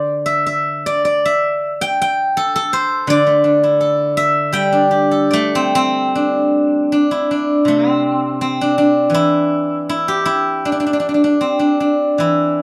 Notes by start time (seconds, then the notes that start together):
Already playing: D3 C5 D5
0.26 E5
0.46 E5
0.86 D5
1.05 D5
1.25 E5
1.81 G5
2.02 G5
2.37 A4
2.56 A4
2.73 C5
3.07 D3 D5
3.27 A3
3.44 D4
3.63 E4
3.81 A4
4.17 E5
4.52 G3 G5
4.72 D4
4.91 G4
5.11 A4
5.31 A3 D5
5.55 C4
5.75 C4
6.15 D4
6.92 D4
7.11 E4
7.31 D4
7.65 C3 A3
7.90 C4
8.41 C4
8.61 D4
8.78 D4
9.10 E3
9.14 E4
9.89 E4
10.08 G4
10.26 E4
10.65 D4
10.72 D4
10.80 D4
10.86 D4
10.93 D4
11.00 D4
11.09 D4
11.14 D4
11.24 D4
11.41 C4
11.59 D4
11.80 D4
12.18 E3 E4